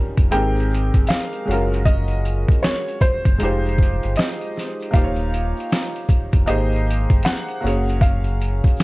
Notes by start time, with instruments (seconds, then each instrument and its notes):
Already playing: felt piano G3 C#4 D#4 F4 A#4
0.17 sub bass F1, kick, closed hi-hat, shaker
0.31 sub bass G#1, felt piano G#3 C4 D#4 G4 A#4 G5, closed hi-hat, shaker
0.56 closed hi-hat, shaker
0.70 shaker
0.74 closed hi-hat
0.94 sub bass G1, kick, closed hi-hat, shaker
1.07 felt piano F5, snare, closed hi-hat, shaker
1.33 closed hi-hat, shaker
1.45 sub bass F#1, felt piano G#3 C#4 F4, shaker
1.50 felt piano F#4 A#4, closed hi-hat
1.72 closed hi-hat, shaker
1.85 felt piano D#5, kick, closed hi-hat, shaker
2.08 closed hi-hat, shaker
2.25 closed hi-hat, shaker
2.48 kick, closed hi-hat, shaker
2.63 felt piano C#5, snare, closed hi-hat, shaker
2.87 closed hi-hat, shaker
3.01 felt piano C5, kick, closed hi-hat, shaker
3.25 sub bass F#1, kick, closed hi-hat, shaker
3.38 sub bass F1, felt piano G#3 D#4 F4, closed hi-hat, shaker
3.43 felt piano G4 C5
3.65 closed hi-hat, shaker
3.78 kick, shaker
3.83 closed hi-hat
4.03 sub bass G1, closed hi-hat, shaker
4.16 felt piano D#5, snare, closed hi-hat, shaker
4.41 closed hi-hat, shaker
4.55 snare, shaker
4.59 closed hi-hat
4.80 closed hi-hat, shaker
4.91 sub bass D#1, felt piano A#3 D#4 F4 F5, kick, shaker
4.95 felt piano G4 C5, closed hi-hat
5.04 felt piano C#5
5.16 closed hi-hat, shaker
5.33 closed hi-hat, shaker
5.57 closed hi-hat, shaker
5.69 snare, closed hi-hat, shaker
5.94 closed hi-hat, shaker
6.09 kick, closed hi-hat, shaker
6.32 sub bass F1, kick, closed hi-hat, shaker
6.46 sub bass G#1, felt piano A#3 D#4 G4 G#4 C5 D#5, closed hi-hat, shaker
6.72 shaker
6.76 closed hi-hat
6.86 shaker
6.90 closed hi-hat
7.10 sub bass G1, kick, closed hi-hat, shaker
7.23 felt piano F#5, snare, closed hi-hat, shaker
7.48 closed hi-hat, shaker
7.61 sub bass F#1, felt piano A#3 C#4 F#4, shaker
7.65 felt piano G#4 C#5, closed hi-hat
7.87 closed hi-hat, shaker
8.01 felt piano F5, kick, closed hi-hat, shaker
8.24 closed hi-hat, shaker
8.40 closed hi-hat, shaker
8.64 kick, closed hi-hat, shaker
8.77 snare, closed hi-hat, shaker